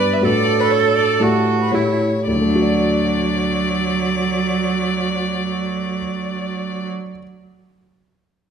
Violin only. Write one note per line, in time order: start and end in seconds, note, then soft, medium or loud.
0.00 0.15 D5 medium
0.13 0.24 E5 medium
0.24 0.62 D5 medium
0.60 0.72 B4 medium
0.71 0.96 C#5 medium
0.96 1.23 D5 medium
1.21 1.60 A4 medium
1.61 1.73 B4 soft
1.72 2.26 C#5 medium
2.27 6.89 D5 medium